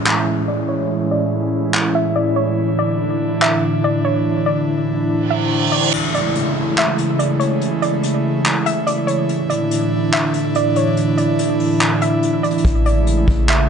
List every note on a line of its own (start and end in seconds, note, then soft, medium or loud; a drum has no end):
0.00 5.90 A2 medium
0.00 5.90 E3 medium
0.00 2.55 G#3 medium
0.00 2.54 C#4 medium
0.00 5.89 E4 medium
0.00 downlifter medium
0.07 0.46 E5 medium
0.07 clap loud
0.48 0.68 D5 medium
0.69 0.89 C#5 medium
1.11 1.31 D5 medium
1.74 clap loud
1.95 2.15 E5 medium
2.16 2.36 D5 medium
2.36 2.56 C#5 medium
2.58 5.90 D3 medium
2.58 5.90 D4 medium
2.79 2.99 D5 medium
3.42 3.81 E5 loud
3.42 clap loud
3.84 4.04 D5 medium
4.05 4.25 C#5 medium
4.46 4.66 D5 medium
5.10 reverse cymbal medium
5.30 5.70 E5 medium
5.72 5.92 D5 medium
5.93 9.26 C#3 medium
5.93 13.69 E3 medium
5.93 9.26 G#3 medium
5.93 9.26 A3 medium
5.93 13.69 E4 medium
5.93 crash medium
5.93 downlifter medium
6.14 6.34 D5 medium
6.14 closed hi-hat medium
6.35 closed hi-hat medium
6.78 7.17 E5 medium
6.78 clap loud
6.78 closed hi-hat medium
6.98 closed hi-hat medium
7.19 7.39 D5 medium
7.19 closed hi-hat medium
7.40 7.60 C#5 medium
7.40 closed hi-hat medium
7.61 closed hi-hat medium
7.82 8.02 D5 medium
7.82 closed hi-hat medium
8.03 closed hi-hat medium
8.45 clap loud
8.45 closed hi-hat medium
8.66 8.86 E5 medium
8.66 closed hi-hat medium
8.87 9.07 D5 medium
8.87 closed hi-hat medium
9.07 9.28 C#5 medium
9.07 closed hi-hat medium
9.29 12.61 A2 medium
9.29 12.61 D3 medium
9.29 12.61 D4 medium
9.29 closed hi-hat medium
9.50 9.70 D5 medium
9.50 closed hi-hat medium
9.71 closed hi-hat medium
10.13 10.53 E5 loud
10.13 clap loud
10.13 closed hi-hat medium
10.34 closed hi-hat medium
10.55 10.75 D5 medium
10.55 closed hi-hat medium
10.76 10.96 C#5 medium
10.76 closed hi-hat medium
10.97 closed hi-hat medium
11.18 11.38 D5 medium
11.18 closed hi-hat medium
11.39 closed hi-hat medium
11.60 open hi-hat medium
11.81 clap loud
11.81 closed hi-hat medium
12.01 12.41 E5 medium
12.01 closed hi-hat medium
12.23 closed hi-hat medium
12.43 12.63 D5 medium
12.43 closed hi-hat medium
12.51 closed hi-hat medium
12.58 closed hi-hat medium
12.65 13.25 A1 loud
12.65 13.69 C#3 medium
12.65 13.69 G#3 medium
12.65 13.69 A3 medium
12.65 kick loud
12.65 closed hi-hat medium
12.86 13.06 D5 medium
12.86 closed hi-hat medium
13.07 closed hi-hat medium
13.28 13.68 A1 loud
13.28 kick loud
13.49 13.69 E5 medium
13.49 clap loud
13.49 closed hi-hat medium